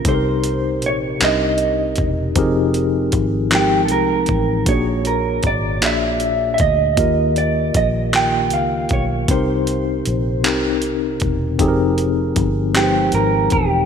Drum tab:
HH |xxxxxx|xxxxxx|xxxxxx|xxxxxx|
CP |---x--|---x--|---x--|---x--|
BD |o----o|o-o--o|o-o--o|o-o--o|

HH |xxxxxx|xxxxxx|
CP |---x--|---x--|
BD |o----o|o-o--o|